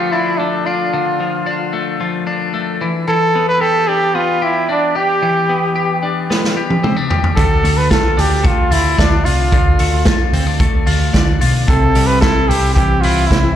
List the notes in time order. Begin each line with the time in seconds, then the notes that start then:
Already playing: D3 F3 A3 D4 F4
0.12 D4 E4
0.38 A3 D4
0.66 D4 F4
0.94 D3
1.20 F3
1.47 D4
1.73 A3
2.01 F3
2.27 D4
2.54 A3
2.81 E3
3.08 E3 A4
3.35 B3
3.49 B4
3.61 G4 A4
3.88 D4 G4
4.15 B3 F4
4.42 E4 G4
4.69 D4
4.96 G4
5.22 E3
5.49 B3
5.76 G4
6.03 D4
6.30 B3, snare
6.44 snare
6.57 G4
6.70 high tom
6.83 C4, mid tom
6.97 D4
7.10 G4, floor tom
7.24 floor tom
7.36 D2 D3 A4, kick, closed hi-hat
7.64 D2 A3, open hi-hat
7.78 B4
7.91 F4 A4, kick, snare, closed hi-hat
8.17 D2 D4 G4, open hi-hat
8.44 A3 F4, kick, closed hi-hat
8.71 D2 E4 F4, open hi-hat
8.98 D2 D4, kick, snare, closed hi-hat
9.25 C2 F4, open hi-hat
9.52 D2 D3, kick, closed hi-hat
9.79 D2 A3, open hi-hat
10.05 F4, kick, snare, closed hi-hat
10.33 D2 C4, open hi-hat
10.47 D4
10.60 A3, kick, closed hi-hat
10.87 D2 F4, open hi-hat
11.13 D2 D4, kick, snare, closed hi-hat
11.41 B1 F4, open hi-hat
11.68 C2 C3 A4, kick, closed hi-hat
11.95 C2 G3, open hi-hat
12.07 B4
12.21 E4 A4, kick, snare, closed hi-hat
12.49 C2 C4 G4, open hi-hat
12.74 E3 G4, kick, closed hi-hat
13.01 C2 E4 F4, open hi-hat
13.27 C2 E4
13.31 C4, kick, snare, closed hi-hat